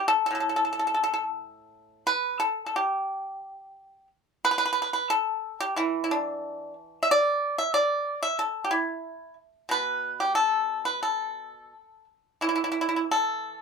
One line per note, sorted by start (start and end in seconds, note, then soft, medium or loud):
0.08 0.25 A4 medium
0.26 0.34 A4 medium
0.31 2.41 A2 soft
0.35 0.39 A4 soft
0.40 0.48 A4 medium
0.49 0.55 A4 soft
0.56 0.64 A4 medium
0.65 0.71 A4 soft
0.73 0.78 A4 soft
0.79 0.86 A4 soft
0.87 0.93 A4 soft
0.94 1.02 A4 soft
1.04 1.12 A4 medium
1.14 1.22 A4 medium
2.07 2.39 B4 medium
2.40 2.65 A4 medium
2.66 2.75 A4 soft
2.76 4.07 G4 medium
4.45 4.50 B4 medium
4.51 4.57 B4 medium
4.58 4.64 B4 medium
4.66 4.71 B4 medium
4.73 4.81 B4 medium
4.82 4.89 B4 medium
4.93 5.10 B4 medium
5.10 5.58 A4 medium
5.60 5.76 G4 medium
5.76 7.73 E3 medium
5.76 6.03 E4 medium
6.04 6.12 E4 soft
6.11 6.73 D4 medium
7.03 7.10 E5 medium
7.11 7.56 D5 loud
7.58 7.73 E5 medium
7.74 8.19 D5 medium
8.23 8.38 E5 medium
8.39 8.64 A4 medium
8.64 8.72 G4 soft
8.71 9.33 E4 medium
9.69 11.73 B2 soft
9.69 10.18 B4 medium
10.20 10.35 G4 medium
10.35 10.83 A4 medium
10.85 11.02 B4 medium
11.03 12.04 A4 medium
12.41 13.62 E3 soft
12.41 12.48 E4 medium
12.49 12.54 E4 medium
12.56 12.63 E4 medium
12.64 12.70 E4 soft
12.72 12.80 E4 medium
12.81 12.88 E4 soft
12.89 12.95 E4 medium
12.96 13.03 E4 soft
13.11 13.59 A4 medium